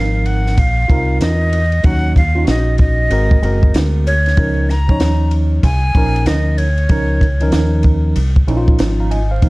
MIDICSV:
0, 0, Header, 1, 5, 480
1, 0, Start_track
1, 0, Key_signature, -5, "major"
1, 0, Tempo, 631579
1, 1398, Time_signature, 4, 2, 24, 8
1, 7212, End_track
2, 0, Start_track
2, 0, Title_t, "Flute"
2, 0, Program_c, 0, 73
2, 0, Note_on_c, 0, 77, 93
2, 200, Note_on_c, 0, 78, 85
2, 212, Note_off_c, 0, 77, 0
2, 448, Note_on_c, 0, 77, 96
2, 460, Note_off_c, 0, 78, 0
2, 917, Note_off_c, 0, 77, 0
2, 922, Note_on_c, 0, 75, 97
2, 1407, Note_on_c, 0, 78, 104
2, 1418, Note_off_c, 0, 75, 0
2, 1643, Note_off_c, 0, 78, 0
2, 1651, Note_on_c, 0, 77, 87
2, 1869, Note_off_c, 0, 77, 0
2, 1896, Note_on_c, 0, 75, 83
2, 2111, Note_off_c, 0, 75, 0
2, 2127, Note_on_c, 0, 75, 97
2, 2856, Note_off_c, 0, 75, 0
2, 3091, Note_on_c, 0, 73, 99
2, 3574, Note_on_c, 0, 82, 101
2, 3585, Note_off_c, 0, 73, 0
2, 4046, Note_off_c, 0, 82, 0
2, 4286, Note_on_c, 0, 80, 111
2, 4763, Note_on_c, 0, 75, 92
2, 4775, Note_off_c, 0, 80, 0
2, 4998, Note_on_c, 0, 73, 91
2, 5010, Note_off_c, 0, 75, 0
2, 5959, Note_off_c, 0, 73, 0
2, 7212, End_track
3, 0, Start_track
3, 0, Title_t, "Tine electric piano"
3, 0, Program_c, 1, 4
3, 0, Note_on_c, 1, 53, 70
3, 0, Note_on_c, 1, 60, 69
3, 0, Note_on_c, 1, 63, 68
3, 0, Note_on_c, 1, 70, 77
3, 441, Note_off_c, 1, 53, 0
3, 445, Note_off_c, 1, 60, 0
3, 447, Note_off_c, 1, 63, 0
3, 451, Note_off_c, 1, 70, 0
3, 670, Note_on_c, 1, 65, 71
3, 678, Note_on_c, 1, 60, 64
3, 685, Note_on_c, 1, 63, 65
3, 691, Note_on_c, 1, 70, 80
3, 1207, Note_off_c, 1, 65, 0
3, 1211, Note_off_c, 1, 60, 0
3, 1214, Note_off_c, 1, 63, 0
3, 1217, Note_off_c, 1, 70, 0
3, 1394, Note_on_c, 1, 54, 72
3, 1401, Note_on_c, 1, 61, 62
3, 1408, Note_on_c, 1, 63, 67
3, 1418, Note_on_c, 1, 66, 82
3, 1663, Note_off_c, 1, 54, 0
3, 1666, Note_off_c, 1, 61, 0
3, 1669, Note_off_c, 1, 63, 0
3, 1675, Note_off_c, 1, 66, 0
3, 1786, Note_on_c, 1, 65, 68
3, 1795, Note_on_c, 1, 61, 63
3, 1802, Note_off_c, 1, 65, 0
3, 1803, Note_on_c, 1, 63, 64
3, 1811, Note_on_c, 1, 65, 67
3, 1837, Note_off_c, 1, 65, 0
3, 1859, Note_on_c, 1, 66, 85
3, 2356, Note_on_c, 1, 56, 74
3, 2358, Note_off_c, 1, 66, 0
3, 2361, Note_off_c, 1, 61, 0
3, 2361, Note_on_c, 1, 60, 70
3, 2365, Note_off_c, 1, 63, 0
3, 2367, Note_on_c, 1, 66, 69
3, 2375, Note_on_c, 1, 70, 88
3, 2562, Note_off_c, 1, 56, 0
3, 2565, Note_off_c, 1, 60, 0
3, 2568, Note_off_c, 1, 66, 0
3, 2572, Note_off_c, 1, 70, 0
3, 2599, Note_on_c, 1, 56, 73
3, 2611, Note_on_c, 1, 60, 64
3, 2615, Note_on_c, 1, 66, 63
3, 2622, Note_on_c, 1, 70, 77
3, 3131, Note_off_c, 1, 56, 0
3, 3137, Note_off_c, 1, 60, 0
3, 3139, Note_off_c, 1, 66, 0
3, 3143, Note_off_c, 1, 70, 0
3, 3312, Note_on_c, 1, 53, 75
3, 3321, Note_on_c, 1, 61, 68
3, 3328, Note_on_c, 1, 63, 70
3, 3335, Note_on_c, 1, 70, 82
3, 3582, Note_off_c, 1, 53, 0
3, 3586, Note_off_c, 1, 61, 0
3, 3590, Note_off_c, 1, 63, 0
3, 3593, Note_off_c, 1, 70, 0
3, 3709, Note_on_c, 1, 53, 76
3, 3719, Note_on_c, 1, 61, 70
3, 3727, Note_on_c, 1, 63, 74
3, 3731, Note_on_c, 1, 73, 82
3, 4288, Note_off_c, 1, 53, 0
3, 4293, Note_off_c, 1, 61, 0
3, 4297, Note_off_c, 1, 63, 0
3, 4299, Note_off_c, 1, 73, 0
3, 4520, Note_on_c, 1, 53, 70
3, 4530, Note_on_c, 1, 61, 66
3, 4536, Note_on_c, 1, 63, 62
3, 4540, Note_on_c, 1, 70, 85
3, 5052, Note_off_c, 1, 53, 0
3, 5057, Note_off_c, 1, 61, 0
3, 5060, Note_off_c, 1, 63, 0
3, 5062, Note_off_c, 1, 70, 0
3, 5235, Note_on_c, 1, 53, 77
3, 5243, Note_on_c, 1, 61, 70
3, 5251, Note_on_c, 1, 63, 68
3, 5255, Note_on_c, 1, 70, 88
3, 5503, Note_off_c, 1, 53, 0
3, 5507, Note_off_c, 1, 61, 0
3, 5511, Note_off_c, 1, 63, 0
3, 5513, Note_off_c, 1, 70, 0
3, 5626, Note_on_c, 1, 51, 67
3, 5633, Note_on_c, 1, 61, 80
3, 5638, Note_on_c, 1, 63, 83
3, 5646, Note_on_c, 1, 70, 93
3, 5665, Note_off_c, 1, 51, 0
3, 5674, Note_on_c, 1, 53, 84
3, 6210, Note_off_c, 1, 61, 0
3, 6213, Note_off_c, 1, 63, 0
3, 6216, Note_off_c, 1, 70, 0
3, 6230, Note_off_c, 1, 53, 0
3, 6439, Note_on_c, 1, 53, 82
3, 6445, Note_on_c, 1, 61, 76
3, 6450, Note_on_c, 1, 63, 80
3, 6456, Note_on_c, 1, 64, 75
3, 6510, Note_off_c, 1, 64, 0
3, 6510, Note_on_c, 1, 65, 88
3, 6841, Note_on_c, 1, 82, 60
3, 6843, Note_on_c, 1, 77, 51
3, 6919, Note_off_c, 1, 82, 0
3, 6921, Note_off_c, 1, 77, 0
3, 6921, Note_on_c, 1, 80, 65
3, 6924, Note_on_c, 1, 75, 59
3, 6971, Note_off_c, 1, 53, 0
3, 6974, Note_off_c, 1, 61, 0
3, 6977, Note_off_c, 1, 63, 0
3, 7007, Note_off_c, 1, 65, 0
3, 7065, Note_off_c, 1, 80, 0
3, 7066, Note_off_c, 1, 75, 0
3, 7075, Note_on_c, 1, 77, 67
3, 7080, Note_on_c, 1, 72, 53
3, 7158, Note_on_c, 1, 53, 54
3, 7163, Note_on_c, 1, 58, 46
3, 7166, Note_on_c, 1, 63, 62
3, 7212, Note_off_c, 1, 53, 0
3, 7212, Note_off_c, 1, 58, 0
3, 7212, Note_off_c, 1, 63, 0
3, 7212, Note_off_c, 1, 72, 0
3, 7212, Note_off_c, 1, 77, 0
3, 7212, End_track
4, 0, Start_track
4, 0, Title_t, "Fingered electric bass"
4, 0, Program_c, 2, 33
4, 0, Note_on_c, 2, 32, 90
4, 416, Note_off_c, 2, 32, 0
4, 438, Note_on_c, 2, 34, 94
4, 667, Note_off_c, 2, 34, 0
4, 678, Note_on_c, 2, 36, 96
4, 907, Note_off_c, 2, 36, 0
4, 918, Note_on_c, 2, 40, 97
4, 1374, Note_off_c, 2, 40, 0
4, 1399, Note_on_c, 2, 39, 100
4, 1855, Note_off_c, 2, 39, 0
4, 1881, Note_on_c, 2, 34, 87
4, 2336, Note_off_c, 2, 34, 0
4, 2358, Note_on_c, 2, 32, 96
4, 2586, Note_off_c, 2, 32, 0
4, 2600, Note_on_c, 2, 30, 98
4, 2827, Note_off_c, 2, 30, 0
4, 2847, Note_on_c, 2, 38, 94
4, 3299, Note_off_c, 2, 38, 0
4, 3326, Note_on_c, 2, 37, 104
4, 3801, Note_off_c, 2, 37, 0
4, 3801, Note_on_c, 2, 39, 103
4, 4256, Note_off_c, 2, 39, 0
4, 4283, Note_on_c, 2, 36, 94
4, 4509, Note_off_c, 2, 36, 0
4, 4521, Note_on_c, 2, 34, 91
4, 4748, Note_off_c, 2, 34, 0
4, 4755, Note_on_c, 2, 38, 87
4, 5213, Note_off_c, 2, 38, 0
4, 5242, Note_on_c, 2, 37, 104
4, 5697, Note_off_c, 2, 37, 0
4, 5719, Note_on_c, 2, 39, 90
4, 6175, Note_off_c, 2, 39, 0
4, 6202, Note_on_c, 2, 36, 99
4, 6428, Note_off_c, 2, 36, 0
4, 6441, Note_on_c, 2, 34, 99
4, 6668, Note_off_c, 2, 34, 0
4, 6685, Note_on_c, 2, 32, 90
4, 7138, Note_off_c, 2, 32, 0
4, 7166, Note_on_c, 2, 37, 94
4, 7212, Note_off_c, 2, 37, 0
4, 7212, End_track
5, 0, Start_track
5, 0, Title_t, "Drums"
5, 195, Note_on_c, 9, 51, 47
5, 271, Note_off_c, 9, 51, 0
5, 352, Note_on_c, 9, 38, 36
5, 428, Note_off_c, 9, 38, 0
5, 437, Note_on_c, 9, 51, 79
5, 439, Note_on_c, 9, 36, 84
5, 513, Note_off_c, 9, 51, 0
5, 515, Note_off_c, 9, 36, 0
5, 680, Note_on_c, 9, 36, 88
5, 685, Note_on_c, 9, 51, 51
5, 756, Note_off_c, 9, 36, 0
5, 761, Note_off_c, 9, 51, 0
5, 917, Note_on_c, 9, 44, 55
5, 917, Note_on_c, 9, 51, 81
5, 929, Note_on_c, 9, 38, 115
5, 993, Note_off_c, 9, 44, 0
5, 993, Note_off_c, 9, 51, 0
5, 1005, Note_off_c, 9, 38, 0
5, 1161, Note_on_c, 9, 51, 73
5, 1237, Note_off_c, 9, 51, 0
5, 1307, Note_on_c, 9, 51, 37
5, 1383, Note_off_c, 9, 51, 0
5, 1396, Note_on_c, 9, 51, 66
5, 1401, Note_on_c, 9, 36, 118
5, 1472, Note_off_c, 9, 51, 0
5, 1477, Note_off_c, 9, 36, 0
5, 1642, Note_on_c, 9, 36, 91
5, 1651, Note_on_c, 9, 51, 53
5, 1718, Note_off_c, 9, 36, 0
5, 1727, Note_off_c, 9, 51, 0
5, 1878, Note_on_c, 9, 44, 55
5, 1878, Note_on_c, 9, 51, 74
5, 1884, Note_on_c, 9, 38, 103
5, 1954, Note_off_c, 9, 44, 0
5, 1954, Note_off_c, 9, 51, 0
5, 1960, Note_off_c, 9, 38, 0
5, 2113, Note_on_c, 9, 51, 51
5, 2122, Note_on_c, 9, 36, 85
5, 2189, Note_off_c, 9, 51, 0
5, 2198, Note_off_c, 9, 36, 0
5, 2360, Note_on_c, 9, 51, 84
5, 2436, Note_off_c, 9, 51, 0
5, 2516, Note_on_c, 9, 36, 85
5, 2592, Note_off_c, 9, 36, 0
5, 2609, Note_on_c, 9, 51, 53
5, 2685, Note_off_c, 9, 51, 0
5, 2758, Note_on_c, 9, 36, 81
5, 2834, Note_off_c, 9, 36, 0
5, 2845, Note_on_c, 9, 44, 55
5, 2845, Note_on_c, 9, 51, 82
5, 2856, Note_on_c, 9, 38, 112
5, 2921, Note_off_c, 9, 44, 0
5, 2921, Note_off_c, 9, 51, 0
5, 2932, Note_off_c, 9, 38, 0
5, 3094, Note_on_c, 9, 51, 71
5, 3170, Note_off_c, 9, 51, 0
5, 3237, Note_on_c, 9, 51, 38
5, 3247, Note_on_c, 9, 38, 34
5, 3313, Note_off_c, 9, 51, 0
5, 3321, Note_on_c, 9, 51, 65
5, 3323, Note_off_c, 9, 38, 0
5, 3324, Note_on_c, 9, 36, 119
5, 3397, Note_off_c, 9, 51, 0
5, 3400, Note_off_c, 9, 36, 0
5, 3567, Note_on_c, 9, 38, 37
5, 3577, Note_on_c, 9, 51, 52
5, 3643, Note_off_c, 9, 38, 0
5, 3653, Note_off_c, 9, 51, 0
5, 3717, Note_on_c, 9, 36, 90
5, 3793, Note_off_c, 9, 36, 0
5, 3799, Note_on_c, 9, 44, 52
5, 3799, Note_on_c, 9, 51, 72
5, 3805, Note_on_c, 9, 38, 102
5, 3875, Note_off_c, 9, 44, 0
5, 3875, Note_off_c, 9, 51, 0
5, 3881, Note_off_c, 9, 38, 0
5, 4036, Note_on_c, 9, 51, 49
5, 4112, Note_off_c, 9, 51, 0
5, 4281, Note_on_c, 9, 36, 88
5, 4283, Note_on_c, 9, 51, 88
5, 4357, Note_off_c, 9, 36, 0
5, 4359, Note_off_c, 9, 51, 0
5, 4521, Note_on_c, 9, 36, 89
5, 4524, Note_on_c, 9, 51, 51
5, 4597, Note_off_c, 9, 36, 0
5, 4600, Note_off_c, 9, 51, 0
5, 4680, Note_on_c, 9, 51, 44
5, 4756, Note_off_c, 9, 51, 0
5, 4757, Note_on_c, 9, 44, 58
5, 4757, Note_on_c, 9, 51, 82
5, 4768, Note_on_c, 9, 38, 119
5, 4833, Note_off_c, 9, 44, 0
5, 4833, Note_off_c, 9, 51, 0
5, 4844, Note_off_c, 9, 38, 0
5, 5001, Note_on_c, 9, 51, 72
5, 5077, Note_off_c, 9, 51, 0
5, 5150, Note_on_c, 9, 51, 37
5, 5226, Note_off_c, 9, 51, 0
5, 5237, Note_on_c, 9, 51, 72
5, 5241, Note_on_c, 9, 36, 113
5, 5313, Note_off_c, 9, 51, 0
5, 5317, Note_off_c, 9, 36, 0
5, 5481, Note_on_c, 9, 36, 86
5, 5492, Note_on_c, 9, 51, 51
5, 5557, Note_off_c, 9, 36, 0
5, 5568, Note_off_c, 9, 51, 0
5, 5628, Note_on_c, 9, 51, 45
5, 5704, Note_off_c, 9, 51, 0
5, 5715, Note_on_c, 9, 44, 50
5, 5715, Note_on_c, 9, 51, 71
5, 5720, Note_on_c, 9, 38, 106
5, 5791, Note_off_c, 9, 44, 0
5, 5791, Note_off_c, 9, 51, 0
5, 5796, Note_off_c, 9, 38, 0
5, 5950, Note_on_c, 9, 51, 49
5, 5961, Note_on_c, 9, 36, 81
5, 6026, Note_off_c, 9, 51, 0
5, 6037, Note_off_c, 9, 36, 0
5, 6199, Note_on_c, 9, 51, 80
5, 6275, Note_off_c, 9, 51, 0
5, 6355, Note_on_c, 9, 36, 92
5, 6431, Note_off_c, 9, 36, 0
5, 6446, Note_on_c, 9, 51, 51
5, 6522, Note_off_c, 9, 51, 0
5, 6596, Note_on_c, 9, 36, 86
5, 6672, Note_off_c, 9, 36, 0
5, 6678, Note_on_c, 9, 44, 58
5, 6678, Note_on_c, 9, 51, 83
5, 6689, Note_on_c, 9, 38, 113
5, 6754, Note_off_c, 9, 44, 0
5, 6754, Note_off_c, 9, 51, 0
5, 6765, Note_off_c, 9, 38, 0
5, 6927, Note_on_c, 9, 51, 72
5, 7003, Note_off_c, 9, 51, 0
5, 7161, Note_on_c, 9, 51, 69
5, 7162, Note_on_c, 9, 36, 111
5, 7212, Note_off_c, 9, 36, 0
5, 7212, Note_off_c, 9, 51, 0
5, 7212, End_track
0, 0, End_of_file